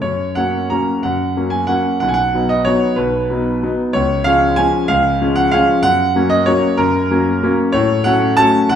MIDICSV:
0, 0, Header, 1, 2, 480
1, 0, Start_track
1, 0, Key_signature, 6, "major"
1, 0, Tempo, 335946
1, 47, Time_signature, 3, 2, 24, 8
1, 1488, Tempo, 323799
1, 5328, Tempo, 316790
1, 13091, End_track
2, 0, Start_track
2, 0, Title_t, "Grand piano"
2, 0, Program_c, 0, 0
2, 23, Note_on_c, 0, 73, 77
2, 42, Note_on_c, 0, 42, 52
2, 295, Control_c, 0, 64, 127
2, 504, Note_on_c, 0, 78, 90
2, 507, Note_off_c, 0, 42, 0
2, 512, Note_off_c, 0, 73, 0
2, 527, Note_on_c, 0, 54, 44
2, 532, Note_on_c, 0, 58, 41
2, 538, Note_on_c, 0, 61, 49
2, 963, Note_off_c, 0, 54, 0
2, 966, Note_off_c, 0, 58, 0
2, 969, Note_off_c, 0, 61, 0
2, 1000, Note_off_c, 0, 78, 0
2, 1000, Note_on_c, 0, 82, 85
2, 1015, Note_on_c, 0, 54, 44
2, 1024, Note_on_c, 0, 58, 45
2, 1030, Control_c, 0, 64, 0
2, 1034, Note_on_c, 0, 61, 45
2, 1442, Note_off_c, 0, 54, 0
2, 1447, Note_off_c, 0, 58, 0
2, 1453, Note_off_c, 0, 61, 0
2, 1470, Note_on_c, 0, 78, 80
2, 1482, Note_off_c, 0, 82, 0
2, 1495, Note_on_c, 0, 42, 59
2, 1751, Control_c, 0, 64, 127
2, 1954, Note_off_c, 0, 42, 0
2, 1970, Note_on_c, 0, 54, 44
2, 1972, Note_on_c, 0, 58, 42
2, 1977, Note_on_c, 0, 61, 46
2, 2171, Note_on_c, 0, 80, 79
2, 2197, Note_off_c, 0, 78, 0
2, 2409, Note_off_c, 0, 54, 0
2, 2410, Note_off_c, 0, 58, 0
2, 2413, Note_off_c, 0, 61, 0
2, 2418, Note_on_c, 0, 78, 92
2, 2437, Note_off_c, 0, 80, 0
2, 2445, Note_on_c, 0, 54, 45
2, 2450, Note_on_c, 0, 61, 51
2, 2453, Note_on_c, 0, 58, 46
2, 2472, Control_c, 0, 64, 0
2, 2886, Note_off_c, 0, 54, 0
2, 2888, Note_off_c, 0, 61, 0
2, 2889, Note_off_c, 0, 78, 0
2, 2890, Note_off_c, 0, 58, 0
2, 2911, Note_on_c, 0, 78, 88
2, 2944, Note_on_c, 0, 35, 61
2, 3025, Note_off_c, 0, 78, 0
2, 3034, Note_on_c, 0, 80, 74
2, 3113, Note_on_c, 0, 78, 95
2, 3138, Note_off_c, 0, 80, 0
2, 3272, Control_c, 0, 64, 127
2, 3403, Note_off_c, 0, 35, 0
2, 3417, Note_on_c, 0, 54, 45
2, 3423, Note_on_c, 0, 59, 43
2, 3430, Note_on_c, 0, 63, 47
2, 3637, Note_on_c, 0, 75, 87
2, 3643, Note_off_c, 0, 78, 0
2, 3850, Note_off_c, 0, 54, 0
2, 3854, Note_off_c, 0, 59, 0
2, 3857, Note_off_c, 0, 63, 0
2, 3867, Note_on_c, 0, 73, 94
2, 3888, Note_off_c, 0, 75, 0
2, 3890, Note_on_c, 0, 54, 51
2, 3900, Note_on_c, 0, 59, 51
2, 3908, Note_on_c, 0, 63, 51
2, 3912, Control_c, 0, 64, 0
2, 4317, Note_off_c, 0, 54, 0
2, 4323, Note_off_c, 0, 59, 0
2, 4327, Note_off_c, 0, 63, 0
2, 4334, Note_on_c, 0, 71, 76
2, 4354, Note_off_c, 0, 73, 0
2, 4359, Note_on_c, 0, 35, 66
2, 4653, Control_c, 0, 64, 127
2, 4825, Note_off_c, 0, 35, 0
2, 4837, Note_on_c, 0, 54, 49
2, 4847, Note_on_c, 0, 59, 47
2, 4856, Note_on_c, 0, 63, 49
2, 5276, Note_off_c, 0, 54, 0
2, 5282, Note_off_c, 0, 59, 0
2, 5286, Note_off_c, 0, 63, 0
2, 5322, Note_on_c, 0, 54, 49
2, 5333, Note_on_c, 0, 59, 50
2, 5334, Note_on_c, 0, 63, 56
2, 5353, Control_c, 0, 64, 0
2, 5556, Note_off_c, 0, 71, 0
2, 5757, Note_off_c, 0, 54, 0
2, 5763, Note_off_c, 0, 59, 0
2, 5764, Note_off_c, 0, 63, 0
2, 5784, Note_on_c, 0, 73, 96
2, 5809, Note_on_c, 0, 37, 64
2, 6055, Control_c, 0, 64, 127
2, 6254, Note_on_c, 0, 77, 107
2, 6269, Note_off_c, 0, 37, 0
2, 6270, Note_off_c, 0, 73, 0
2, 6282, Note_on_c, 0, 53, 53
2, 6289, Note_on_c, 0, 56, 52
2, 6290, Note_on_c, 0, 61, 59
2, 6728, Note_off_c, 0, 53, 0
2, 6732, Note_off_c, 0, 56, 0
2, 6732, Note_off_c, 0, 61, 0
2, 6738, Note_on_c, 0, 80, 114
2, 6763, Note_off_c, 0, 77, 0
2, 6768, Note_on_c, 0, 53, 52
2, 6772, Note_on_c, 0, 56, 58
2, 6780, Note_on_c, 0, 61, 59
2, 6797, Control_c, 0, 64, 0
2, 7200, Note_off_c, 0, 53, 0
2, 7203, Note_off_c, 0, 56, 0
2, 7207, Note_off_c, 0, 61, 0
2, 7221, Note_on_c, 0, 77, 105
2, 7234, Note_off_c, 0, 80, 0
2, 7244, Note_on_c, 0, 37, 73
2, 7505, Control_c, 0, 64, 127
2, 7708, Note_off_c, 0, 37, 0
2, 7723, Note_on_c, 0, 53, 52
2, 7732, Note_on_c, 0, 56, 53
2, 7735, Note_on_c, 0, 61, 60
2, 7940, Note_on_c, 0, 78, 104
2, 7954, Note_off_c, 0, 77, 0
2, 8162, Note_off_c, 0, 53, 0
2, 8167, Note_off_c, 0, 56, 0
2, 8168, Note_off_c, 0, 61, 0
2, 8181, Note_on_c, 0, 77, 107
2, 8197, Note_off_c, 0, 78, 0
2, 8207, Note_on_c, 0, 53, 58
2, 8215, Note_on_c, 0, 61, 65
2, 8218, Note_on_c, 0, 56, 53
2, 8235, Control_c, 0, 64, 0
2, 8631, Note_off_c, 0, 53, 0
2, 8635, Note_off_c, 0, 61, 0
2, 8637, Note_off_c, 0, 56, 0
2, 8653, Note_on_c, 0, 78, 120
2, 8665, Note_off_c, 0, 77, 0
2, 8677, Note_on_c, 0, 42, 69
2, 8942, Control_c, 0, 64, 127
2, 9128, Note_off_c, 0, 42, 0
2, 9149, Note_on_c, 0, 54, 54
2, 9158, Note_on_c, 0, 58, 54
2, 9164, Note_on_c, 0, 61, 67
2, 9364, Note_on_c, 0, 75, 102
2, 9374, Note_off_c, 0, 78, 0
2, 9590, Note_off_c, 0, 54, 0
2, 9595, Note_off_c, 0, 58, 0
2, 9599, Note_off_c, 0, 61, 0
2, 9611, Note_on_c, 0, 73, 95
2, 9625, Note_off_c, 0, 75, 0
2, 9633, Note_on_c, 0, 54, 62
2, 9642, Note_on_c, 0, 58, 57
2, 9647, Note_on_c, 0, 61, 63
2, 9653, Control_c, 0, 64, 0
2, 10068, Note_off_c, 0, 54, 0
2, 10073, Note_off_c, 0, 58, 0
2, 10076, Note_off_c, 0, 61, 0
2, 10089, Note_on_c, 0, 70, 102
2, 10105, Note_off_c, 0, 73, 0
2, 10108, Note_on_c, 0, 42, 74
2, 10419, Control_c, 0, 64, 127
2, 10575, Note_off_c, 0, 42, 0
2, 10597, Note_on_c, 0, 54, 59
2, 10599, Note_on_c, 0, 58, 56
2, 10605, Note_on_c, 0, 61, 64
2, 11034, Note_off_c, 0, 54, 0
2, 11035, Note_off_c, 0, 58, 0
2, 11039, Note_off_c, 0, 61, 0
2, 11085, Note_on_c, 0, 54, 56
2, 11087, Note_on_c, 0, 58, 59
2, 11094, Control_c, 0, 64, 0
2, 11096, Note_on_c, 0, 61, 65
2, 11306, Note_off_c, 0, 70, 0
2, 11507, Note_off_c, 0, 54, 0
2, 11508, Note_off_c, 0, 58, 0
2, 11513, Note_off_c, 0, 61, 0
2, 11529, Note_on_c, 0, 73, 102
2, 11552, Note_on_c, 0, 45, 81
2, 11798, Control_c, 0, 64, 127
2, 12008, Note_on_c, 0, 78, 111
2, 12017, Note_off_c, 0, 45, 0
2, 12020, Note_off_c, 0, 73, 0
2, 12036, Note_on_c, 0, 54, 56
2, 12041, Note_on_c, 0, 61, 69
2, 12043, Note_on_c, 0, 57, 60
2, 12475, Note_off_c, 0, 54, 0
2, 12478, Note_off_c, 0, 61, 0
2, 12479, Note_off_c, 0, 57, 0
2, 12501, Note_on_c, 0, 81, 122
2, 12510, Note_off_c, 0, 78, 0
2, 12532, Note_on_c, 0, 54, 58
2, 12535, Note_on_c, 0, 57, 60
2, 12540, Note_on_c, 0, 61, 63
2, 12542, Control_c, 0, 64, 0
2, 12966, Note_off_c, 0, 54, 0
2, 12967, Note_off_c, 0, 57, 0
2, 12970, Note_off_c, 0, 61, 0
2, 12998, Note_on_c, 0, 78, 114
2, 12999, Note_off_c, 0, 81, 0
2, 13022, Note_on_c, 0, 35, 74
2, 13091, Note_off_c, 0, 35, 0
2, 13091, Note_off_c, 0, 78, 0
2, 13091, End_track
0, 0, End_of_file